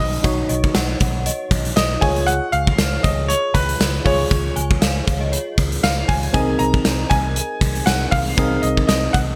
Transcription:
0.00 0.17 B1 loud
0.00 0.20 D#4 medium
0.00 0.20 F#4 medium
0.00 0.21 B4 medium
0.00 0.46 D#5 medium
0.13 closed hi-hat medium
0.23 0.42 B1 loud
0.23 1.98 D#4 medium
0.23 1.98 F#4 medium
0.23 1.99 C#5 medium
0.23 kick loud
0.23 closed hi-hat medium
0.49 0.68 B1 medium
0.49 0.73 D#5 medium
0.49 closed hi-hat medium
0.64 kick medium
0.75 0.93 B1 loud
0.75 1.27 F#5 loud
0.75 snare loud
0.75 closed hi-hat loud
0.75 tambourine medium
1.00 1.29 B1 loud
1.00 kick loud
1.00 closed hi-hat medium
1.26 1.63 D#5 medium
1.26 closed hi-hat loud
1.51 1.69 B1 loud
1.51 kick medium
1.51 closed hi-hat medium
1.65 closed hi-hat medium
1.76 1.95 B1 medium
1.76 2.03 D#5 loud
1.76 snare loud
1.76 closed hi-hat loud
1.76 tambourine medium
2.01 2.39 C#2 loud
2.01 4.01 F4 medium
2.01 4.02 G#4 medium
2.01 4.02 C#5 medium
2.01 2.28 G#5 loud
2.01 kick loud
2.01 open hi-hat medium
2.16 closed hi-hat medium
2.27 2.53 F#5 loud
2.27 closed hi-hat medium
2.52 2.71 C#2 loud
2.52 3.05 F5 loud
2.52 closed hi-hat medium
2.67 kick medium
2.78 2.97 C#2 loud
2.78 snare loud
2.78 closed hi-hat loud
2.78 tambourine medium
3.03 3.33 C#2 medium
3.03 3.30 D#5 medium
3.03 kick loud
3.03 closed hi-hat medium
3.28 3.55 C#5 loud
3.28 closed hi-hat loud
3.54 3.73 C#2 loud
3.54 4.07 B4 medium
3.54 kick medium
3.54 closed hi-hat medium
3.69 closed hi-hat medium
3.80 3.98 C#2 loud
3.80 snare loud
3.80 closed hi-hat medium
3.80 tambourine medium
4.04 4.24 C#2 loud
4.04 6.04 F4 medium
4.04 6.05 G#4 medium
4.04 4.53 C#5 medium
4.04 6.06 C#5 medium
4.04 kick loud
4.04 open hi-hat medium
4.31 4.49 C#2 loud
4.31 kick loud
4.31 closed hi-hat medium
4.56 4.75 C#2 loud
4.56 4.80 G#5 loud
4.56 closed hi-hat medium
4.71 kick loud
4.81 5.00 C#2 loud
4.81 5.18 F5 loud
4.81 snare loud
4.81 closed hi-hat loud
4.81 tambourine medium
5.07 5.36 C#2 loud
5.07 kick medium
5.07 closed hi-hat medium
5.21 5.32 D#5 medium
5.32 5.69 C#5 medium
5.32 closed hi-hat loud
5.58 5.76 C#2 loud
5.58 kick loud
5.58 closed hi-hat medium
5.72 closed hi-hat medium
5.83 6.02 C#2 loud
5.83 6.10 F5 loud
5.83 snare loud
5.83 closed hi-hat medium
5.83 tambourine medium
6.08 6.27 C#2 loud
6.08 6.32 G#5 loud
6.08 kick medium
6.08 open hi-hat medium
6.23 closed hi-hat medium
6.33 6.53 C2 loud
6.33 8.33 C4 medium
6.33 8.33 D#4 medium
6.33 8.34 G#4 medium
6.33 8.34 A#4 medium
6.33 8.34 D#5 medium
6.33 6.60 G#5 loud
6.33 kick loud
6.33 closed hi-hat medium
6.59 6.78 C2 medium
6.59 7.12 A#5 loud
6.59 closed hi-hat medium
6.74 kick loud
6.85 7.03 C2 loud
6.85 snare loud
6.85 closed hi-hat loud
6.85 tambourine medium
7.10 7.39 C2 loud
7.10 7.89 G#5 loud
7.10 kick medium
7.10 closed hi-hat medium
7.36 closed hi-hat loud
7.61 7.80 C2 loud
7.61 kick loud
7.61 closed hi-hat medium
7.75 closed hi-hat medium
7.86 8.05 C2 loud
7.86 8.13 F#5 loud
7.86 snare loud
7.86 closed hi-hat medium
7.86 tambourine medium
8.11 8.31 C2 loud
8.11 8.64 F5 loud
8.11 kick medium
8.11 open hi-hat medium
8.37 8.56 C2 loud
8.37 9.36 C4 medium
8.37 9.36 D#4 medium
8.37 9.36 G#4 medium
8.37 9.36 A#4 medium
8.37 9.36 D#5 medium
8.37 kick loud
8.37 closed hi-hat medium
8.62 8.82 C2 loud
8.62 8.86 D#5 medium
8.62 closed hi-hat medium
8.77 kick medium
8.87 9.07 C2 loud
8.87 9.14 D#5 medium
8.87 snare loud
8.87 closed hi-hat loud
8.87 tambourine medium
9.13 9.36 C2 loud
9.13 9.19 F#5 loud
9.13 kick loud
9.13 closed hi-hat medium

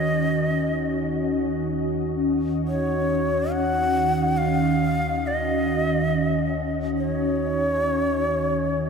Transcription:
0.00 8.90 D#2 medium
0.00 8.90 D#3 medium
0.00 8.90 C#4 medium
0.00 8.90 F#4 medium
0.00 1.38 D#5 medium
0.00 8.90 D#5 medium
2.68 3.54 C#5 medium
3.52 4.39 F#5 loud
4.37 5.28 F5 loud
5.27 6.70 D#5 medium
6.98 8.90 C#5 medium

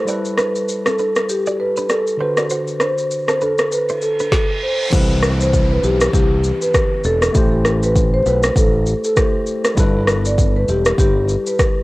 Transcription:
0.05 2.14 G3 medium
0.05 2.15 E4 medium
0.05 2.16 A4 medium
0.05 0.19 D5 loud
0.05 shaker medium
0.09 0.20 G4 medium
0.09 2.17 B4 medium
0.25 shaker soft
0.38 0.50 D4 medium
0.38 0.53 B4 medium
0.38 0.50 B4 medium
0.38 cross-stick medium
0.38 shaker soft
0.55 shaker soft
0.69 shaker medium
0.86 0.95 C4 medium
0.86 0.94 A4 medium
0.86 0.97 A4 medium
0.86 cross-stick medium
0.86 shaker soft
0.99 1.11 D4 medium
0.99 1.14 A4 medium
0.99 1.10 B4 medium
0.99 shaker soft
1.16 cross-stick medium
1.16 shaker medium
1.29 1.44 G4 medium
1.29 shaker medium
1.46 1.56 F#4 medium
1.46 1.55 D5 medium
1.46 shaker soft
1.60 1.75 B4 medium
1.77 1.86 D4 medium
1.77 1.85 B4 medium
1.77 shaker soft
1.89 2.02 G4 medium
1.89 2.05 A4 medium
1.89 2.01 D5 medium
1.89 cross-stick medium
1.89 shaker medium
2.07 shaker soft
2.17 4.27 D3 medium
2.17 4.27 D4 medium
2.17 4.28 F#4 medium
2.17 2.35 B4 medium
2.17 2.31 C5 medium
2.21 2.32 F#4 medium
2.21 4.29 C5 medium
2.37 2.47 F#4 medium
2.37 2.46 D5 medium
2.37 cross-stick medium
2.37 shaker soft
2.50 2.62 F#4 medium
2.50 2.62 C5 medium
2.50 shaker medium
2.68 shaker soft
2.80 2.93 D4 medium
2.80 2.92 B4 medium
2.80 2.96 C5 medium
2.80 cross-stick medium
2.80 shaker medium
2.98 shaker soft
3.11 shaker medium
3.28 3.37 C4 soft
3.28 3.37 A4 medium
3.28 3.40 C5 medium
3.28 cross-stick medium
3.28 shaker soft
3.41 3.53 D4 medium
3.41 3.56 A4 medium
3.41 3.53 B4 medium
3.41 shaker soft
3.58 cross-stick medium
3.58 shaker medium
3.71 3.87 B4 medium
3.71 reverse cymbal medium
3.71 shaker medium
3.89 3.98 E4 medium
3.89 3.98 C5 medium
3.89 shaker soft
4.02 4.17 A4 medium
4.02 shaker medium
4.19 4.28 D4 medium
4.19 4.28 B4 medium
4.19 shaker soft
4.32 4.47 A4 medium
4.32 kick loud
4.32 snare medium
4.63 4.78 C5 medium
4.90 5.79 C2 loud
4.90 7.30 E3 medium
4.90 7.31 C4 medium
4.90 7.31 E4 medium
4.90 kick loud
4.90 crash medium
4.90 downlifter medium
4.90 shaker medium
4.95 7.32 B4 medium
5.23 cross-stick medium
5.23 shaker medium
5.41 5.52 C5 medium
5.41 shaker medium
5.53 kick medium
5.53 shaker medium
5.72 5.82 B4 medium
5.83 6.07 B1 medium
5.83 5.99 G4 medium
5.83 shaker soft
6.01 cross-stick loud
6.01 shaker medium
6.13 6.50 C2 loud
6.13 6.29 G4 medium
6.13 kick loud
6.13 shaker medium
6.44 shaker medium
6.62 6.73 B4 medium
6.62 shaker medium
6.74 kick loud
6.74 cross-stick medium
6.74 shaker medium
7.04 7.28 E1 medium
7.04 7.20 A4 medium
7.04 shaker soft
7.22 cross-stick medium
7.22 shaker medium
7.32 8.22 A1 loud
7.32 9.12 A3 medium
7.32 9.13 E4 medium
7.32 9.14 G4 medium
7.32 kick loud
7.32 shaker medium
7.37 9.14 C5 medium
7.65 cross-stick medium
7.65 shaker medium
7.83 7.94 B4 medium
7.83 shaker medium
7.96 kick medium
7.96 shaker medium
8.14 8.24 C5 medium
8.26 8.49 B1 medium
8.26 8.41 B4 medium
8.26 shaker soft
8.43 cross-stick loud
8.43 shaker medium
8.56 8.93 A1 medium
8.56 8.72 A4 medium
8.56 kick loud
8.56 shaker medium
8.86 shaker medium
9.04 9.15 A4 medium
9.04 shaker medium
9.16 9.77 A3 medium
9.16 9.75 E4 soft
9.16 9.78 G4 soft
9.16 9.78 C5 medium
9.16 kick loud
9.16 cross-stick medium
9.16 shaker medium
9.46 shaker soft
9.65 cross-stick medium
9.65 shaker medium
9.75 10.64 G1 loud
9.75 11.83 G3 medium
9.75 11.83 E4 medium
9.75 11.83 A4 medium
9.75 kick loud
9.75 shaker medium
9.80 11.83 B4 medium
10.07 cross-stick medium
10.07 shaker medium
10.25 10.37 D5 medium
10.25 shaker medium
10.38 kick medium
10.38 shaker medium
10.56 10.67 B4 medium
10.68 10.92 E1 medium
10.68 10.84 G4 medium
10.68 shaker soft
10.85 cross-stick loud
10.85 shaker medium
10.98 11.35 G1 loud
10.98 11.14 G4 medium
10.98 kick loud
10.98 shaker medium
11.29 shaker medium
11.47 11.58 B4 medium
11.47 shaker medium
11.59 kick medium
11.59 cross-stick medium
11.59 shaker medium

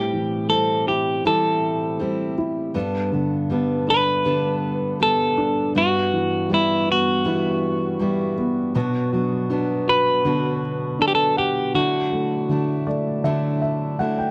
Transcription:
0.00 0.50 A2 soft
0.00 2.71 A2 soft
0.00 0.48 G3 medium
0.00 0.49 C4 medium
0.00 0.50 E4 medium
0.00 0.49 G4 medium
0.00 0.51 G4 medium
0.13 1.24 E3 soft
0.49 1.25 G3 soft
0.49 1.25 C4 soft
0.49 1.96 C4 soft
0.49 1.25 E4 soft
0.49 1.26 G4 soft
0.49 0.88 A4 medium
0.87 2.33 E4 soft
0.87 1.26 G4 soft
1.25 2.00 A2 medium
1.25 2.71 E3 soft
1.25 1.99 G3 medium
1.25 1.99 C4 medium
1.25 2.00 E4 medium
1.25 2.01 G4 medium
1.25 2.34 A4 medium
1.99 2.74 G3 soft
1.99 2.74 C4 soft
1.99 2.73 C4 soft
1.99 2.75 E4 medium
1.99 2.75 G4 soft
2.38 2.74 E4 soft
2.74 5.71 G2 medium
2.74 3.12 G3 medium
2.74 3.12 B3 medium
2.74 3.12 D4 medium
2.74 3.11 A4 medium
3.12 4.24 D3 soft
3.12 3.49 B3 soft
3.12 3.50 D4 soft
3.12 3.50 A4 soft
3.50 3.87 G3 soft
3.50 3.88 B3 medium
3.50 4.96 B3 soft
3.50 3.87 D4 medium
3.50 3.86 A4 medium
3.87 4.24 B3 soft
3.87 5.34 D4 soft
3.87 4.25 D4 soft
3.87 4.25 A4 soft
3.87 5.02 B4 medium
4.25 5.71 D3 soft
4.25 4.99 G3 medium
4.25 5.00 B3 medium
4.25 5.00 D4 medium
4.25 5.01 A4 medium
5.00 5.75 G3 medium
5.00 5.73 B3 soft
5.00 5.75 B3 soft
5.00 5.76 D4 soft
5.00 5.76 A4 medium
5.00 5.72 A4 medium
5.38 5.74 D4 medium
5.75 8.71 G2 soft
5.75 6.48 G3 medium
5.75 6.50 B3 medium
5.75 6.50 E4 medium
5.75 6.52 F#4 medium
5.75 6.54 F#4 medium
6.13 7.24 E3 soft
6.50 7.23 G3 soft
6.50 7.96 G3 soft
6.50 7.25 B3 soft
6.50 7.24 E4 soft
6.50 7.26 F#4 soft
6.54 6.91 E4 medium
6.88 8.34 B3 soft
6.88 8.36 F#4 medium
7.24 8.71 E3 soft
7.24 7.98 G3 medium
7.24 8.00 B3 medium
7.24 8.00 E4 medium
7.24 8.01 F#4 medium
7.99 8.75 G3 medium
7.99 8.73 G3 soft
7.99 8.75 B3 medium
7.99 8.75 E4 medium
7.99 8.76 F#4 medium
8.38 8.74 B3 soft
8.75 9.12 B2 medium
8.75 11.71 B2 medium
8.75 9.12 F#3 medium
8.75 9.13 B3 medium
8.75 9.13 D4 medium
8.75 9.11 F#4 medium
9.13 10.59 F#3 soft
9.13 9.49 B3 soft
9.13 9.50 D4 soft
9.13 9.50 F#4 soft
9.50 10.25 F#3 medium
9.50 10.24 B3 medium
9.50 10.96 D4 soft
9.50 10.26 D4 medium
9.50 10.26 F#4 medium
9.87 11.33 F#4 soft
9.87 11.01 B4 medium
10.24 11.00 B2 medium
10.24 11.71 D3 soft
10.24 11.75 F#3 medium
10.24 10.99 B3 medium
10.24 11.01 D4 medium
10.24 11.76 F#4 medium
10.99 11.75 B3 soft
10.99 11.72 D4 soft
10.99 11.76 D4 soft
10.99 11.07 A4 medium
11.08 11.14 G4 medium
11.15 11.36 A4 medium
11.37 11.75 G4 medium
11.37 11.74 F#5 soft
11.74 12.48 D3 medium
11.74 12.55 D3 medium
11.74 12.48 F#3 medium
11.74 12.49 A3 medium
11.74 12.51 D4 medium
11.74 12.52 E4 medium
11.74 13.96 F#4 medium
12.12 12.85 A3 soft
12.49 13.22 D3 soft
12.49 13.24 F#3 soft
12.49 13.24 A3 medium
12.49 13.25 D4 medium
12.49 13.25 E4 soft
12.87 13.98 A3 soft
12.87 13.22 D5 soft
13.24 14.31 D3 soft
13.24 14.05 D3 medium
13.24 13.98 F#3 medium
13.24 13.99 A3 medium
13.24 14.01 D4 medium
13.24 14.01 E4 medium
13.24 13.59 E5 medium
13.62 13.97 E5 soft
13.99 14.31 F#3 soft
13.99 14.31 A3 soft
13.99 14.31 A3 medium
13.99 14.31 D4 medium
13.99 14.31 E4 medium
13.99 14.17 F#5 medium
14.18 14.31 G5 soft

